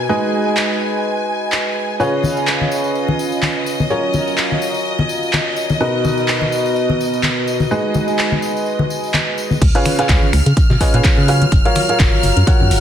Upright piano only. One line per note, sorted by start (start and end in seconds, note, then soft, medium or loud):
0.09 1.97 G#3 medium
0.09 1.97 D#4 medium
0.09 1.97 F#4 medium
0.09 1.97 G#4 medium
0.09 1.97 B4 medium
0.09 1.97 D#5 medium
2.00 3.88 C#3 medium
2.00 3.88 C#4 medium
2.00 3.88 F4 medium
2.00 3.88 G#4 medium
2.00 3.88 B4 medium
2.00 3.88 C#5 medium
3.90 5.78 F#3 medium
3.90 5.78 C#4 medium
3.90 5.78 F4 medium
3.90 5.78 F#4 medium
3.90 5.78 A#4 medium
3.90 5.78 C#5 medium
5.81 7.69 B2 medium
5.81 7.69 D#4 medium
5.81 7.69 F#4 medium
5.81 7.69 A#4 medium
5.81 7.69 B4 medium
5.81 7.69 D#5 medium
7.71 9.59 G#3 medium
7.71 9.59 D#4 medium
7.71 9.59 F#4 medium
7.71 9.59 G#4 medium
7.71 9.59 B4 medium
7.71 9.59 D#5 medium
9.75 9.95 C#3 medium
9.75 9.96 F4 medium
9.75 9.96 G#4 medium
9.75 9.96 B4 medium
9.75 9.96 C#5 medium
9.75 9.96 F5 medium
9.99 10.08 C#3 medium
9.99 10.08 F4 medium
9.99 10.08 G#4 medium
9.99 10.08 B4 medium
9.99 10.08 C#5 medium
9.99 10.08 F5 medium
10.09 10.25 F4 medium
10.09 10.25 G#4 medium
10.09 10.25 B4 medium
10.09 10.25 F5 loud
10.81 10.91 C#3 medium
10.81 10.91 F4 medium
10.81 10.91 G#4 medium
10.81 10.91 B4 medium
10.81 10.91 C#5 medium
10.81 10.91 D#5 loud
10.94 11.26 C#3 medium
10.94 11.26 F4 medium
10.94 11.26 G#4 medium
10.94 11.26 B4 medium
10.94 11.26 C#5 medium
10.94 11.26 F5 loud
11.28 11.44 F#3 medium
11.28 11.44 F4 medium
11.28 11.44 G#4 medium
11.28 11.44 B4 medium
11.28 11.44 C#5 medium
11.28 11.44 F5 medium
11.65 11.86 F#3 loud
11.65 11.86 F4 medium
11.65 11.86 F#4 medium
11.65 11.86 A#4 medium
11.65 11.86 C#5 medium
11.65 11.86 F5 loud
11.89 11.98 F#3 medium
11.89 11.98 F4 medium
11.89 11.98 F#4 medium
11.89 11.98 A#4 medium
11.89 11.98 C#5 medium
11.89 11.98 F5 medium
12.47 12.80 F#3 medium
12.47 12.80 F4 medium
12.47 12.80 F#4 medium
12.47 12.80 A#4 medium
12.47 12.80 C#5 medium
12.47 12.80 F#5 medium